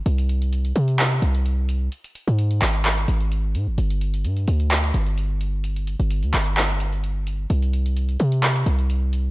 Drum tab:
HH |xxxxxxxxxxxxx-x-|xxxxxxoxxxxxx-x-|xxxxxxxxxxxxx-x-|xxxxxxoxxxxxx-x-|
CP |--------x-------|------x-x-------|--------x-------|------x-x-------|

HH |xxxxxxxxxxxxx-x-|
CP |--------x-------|